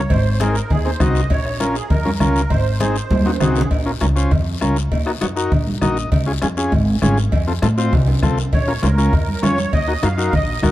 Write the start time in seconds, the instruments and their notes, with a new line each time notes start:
Already playing: accordion C#5
0.10 upright bass G#1, accordion C5, bombo low, cowbell, high conga, low conga, long guiro
0.40 transistor combo organ C4 D#4 G#4, accordion A#4, bombo rim, high conga, short guiro
0.55 short guiro
0.70 upright bass D#2, accordion G#4, bombo low, cowbell, high conga, low conga, long guiro
0.85 transistor combo organ C4 D#4 G#4, accordion C5
1.00 upright bass C2, transistor combo organ C4 D#4 F#4, accordion D#5, bombo low, bombo rim, high conga, low conga, low timbale, short guiro
1.15 short guiro
1.30 upright bass A#1, accordion C#5, bombo low, cowbell, high conga, long guiro
1.46 bombo rim
1.60 transistor combo organ C#4 F4 A#4, accordion A#4, bombo rim, high conga, short guiro
1.75 accordion G#4, short guiro
1.90 upright bass F2, accordion A#4, bombo low, cowbell, high conga, low conga, long guiro
2.05 transistor combo organ C#4 F4 A#4, high conga
2.20 upright bass C#2, transistor combo organ C#4 F4 A#4, accordion A#4, bombo rim, high conga, low conga, low timbale, short guiro
2.36 short guiro
2.50 upright bass G#1, accordion C5, bombo low, cowbell, high conga, low conga, long guiro
2.80 transistor combo organ C4 D#4 G#4, accordion C5, bombo rim, high conga, short guiro
2.96 short guiro
3.10 upright bass D#2, bombo low, cowbell, high conga, high timbale, long guiro
3.21 high conga
3.26 transistor combo organ C4 D#4 F#4, low timbale
3.40 upright bass C2, transistor combo organ C4 D#4 F#4, accordion G#4, bombo rim, low conga, low timbale, short guiro
3.55 low timbale, short guiro
3.61 low conga
3.71 upright bass A#1, bombo low, cowbell, high conga, long guiro
3.86 transistor combo organ C#4 F4 A#4
4.01 upright bass C#2, transistor combo organ C#4 F4 A#4, bombo rim, high conga, short guiro
4.16 transistor combo organ C#4 F4 C5, short guiro
4.31 upright bass F2, bombo low, cowbell, high conga, low conga, long guiro
4.61 upright bass C#2, transistor combo organ C#4 F4 A#4, bombo rim, high conga, short guiro
4.76 short guiro
4.91 upright bass D#2, bombo low, cowbell, high conga, long guiro
5.06 transistor combo organ D#4 F#4 A#4, bombo rim
5.21 upright bass F#2, transistor combo organ D#4 F#4 C#5, bombo rim, high conga, short guiro
5.36 transistor combo organ D#4 F#4 A#4, short guiro
5.51 upright bass A#1, bombo low, cowbell, high conga, low conga, long guiro
5.67 high conga
5.82 upright bass A#1, transistor combo organ D#4 F#4 A#4 D#5, bombo rim, high conga, low conga, low timbale, short guiro
5.97 short guiro
6.12 upright bass C#2, bombo low, cowbell, high conga, low conga, long guiro
6.26 transistor combo organ C#4 F4 G#4
6.42 upright bass F2, transistor combo organ C#4 F4 G#4, bombo rim, high conga, short guiro
6.57 transistor combo organ C#4 F4 G#4, short guiro
6.72 upright bass G#1, bombo low, cowbell, high conga, low conga, long guiro
7.02 upright bass G#1, transistor combo organ C#4 F4 G#4, bombo rim, high conga, low conga, low timbale, short guiro
7.17 short guiro
7.32 upright bass F2, bombo low, cowbell, high conga, low conga, long guiro
7.47 transistor combo organ C4 F4 A4
7.62 upright bass A2, transistor combo organ C4 F4 A4, bombo rim, high conga, short guiro
7.78 transistor combo organ C4 F4 C5, high timbale, short guiro
7.92 upright bass C2, bombo low, cowbell, high conga, low conga, high timbale, long guiro
8.08 high conga, low timbale
8.23 upright bass C2, transistor combo organ C4 F4 A4, bombo low, bombo rim, high conga, low conga, short guiro
8.38 low timbale, short guiro
8.53 upright bass A#1, accordion C#5, bombo low, cowbell, high conga, low conga, long guiro
8.67 transistor combo organ C#4 F4 A#4
8.82 upright bass C#2, transistor combo organ C#4 F4 C5, accordion A#4, bombo rim, high conga, short guiro
8.98 transistor combo organ C#4 F4 A#4, short guiro
9.13 upright bass F2, bombo low, cowbell, high conga, low conga, long guiro
9.28 high conga
9.42 upright bass F2, transistor combo organ C#4 F4 C#5, accordion C#5, bombo rim, high conga, low conga, low timbale, short guiro
9.58 high conga, short guiro
9.73 upright bass D#2, accordion D#5, bombo low, cowbell, high conga, low conga, long guiro
9.88 transistor combo organ D#4 F#4 A#4
10.03 upright bass F#2, transistor combo organ D#4 F#4 A#4, accordion F5, bombo rim, high conga, short guiro
10.18 transistor combo organ D#4 F#4 A#4, short guiro
10.33 upright bass A#1, accordion D#5, bombo low, cowbell, high conga, low conga, long guiro
10.63 upright bass A#1, transistor combo organ D#4 F#4 A#4, accordion A#4, bombo low, bombo rim, high conga, low conga, low timbale, short guiro